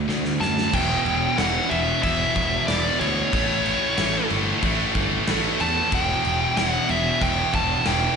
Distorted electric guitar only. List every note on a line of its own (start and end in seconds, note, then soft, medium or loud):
0.08 0.37 D3 medium
0.08 0.38 A3 medium
0.40 0.70 D3 medium
0.40 0.70 A3 medium
0.72 1.37 E2 loud
0.72 1.37 B2 loud
0.72 1.39 E3 loud
1.38 1.69 E2 medium
1.38 1.69 B2 medium
1.38 1.71 E3 loud
1.70 2.01 E2 medium
1.70 2.02 B2 loud
1.70 2.03 E3 loud
2.03 2.67 E2 medium
2.03 2.68 B2 loud
2.03 2.70 E3 loud
2.69 3.00 E2 medium
2.69 3.00 B2 medium
2.69 3.02 E3 loud
3.01 3.31 E2 medium
3.01 3.32 B2 loud
3.01 3.34 E3 medium
3.33 3.96 A2 loud
3.33 3.98 E3 loud
3.33 3.98 A3 loud
3.98 4.29 A2 medium
3.98 4.30 E3 medium
3.98 4.30 A3 medium
4.30 4.61 A2 loud
4.30 4.62 E3 loud
4.30 4.62 A3 loud
4.62 5.27 A2 medium
4.62 5.29 E3 loud
4.62 5.28 A3 loud
5.28 5.59 A2 medium
5.28 5.61 E3 medium
5.28 5.60 A3 medium
5.60 5.90 A2 medium
5.60 5.93 E3 medium
5.60 5.91 A3 medium
5.92 6.55 E2 loud
5.92 6.56 B2 loud
5.92 6.57 E3 loud
6.56 6.88 E2 medium
6.56 6.89 B2 medium
6.56 6.91 E3 loud
6.90 7.20 E2 medium
6.90 7.21 B2 loud
6.90 7.22 E3 loud
7.21 7.85 E2 medium
7.21 7.85 B2 medium
7.21 7.87 E3 loud
7.86 8.16 E2 medium
7.86 8.16 B2 medium
7.86 8.16 E3 medium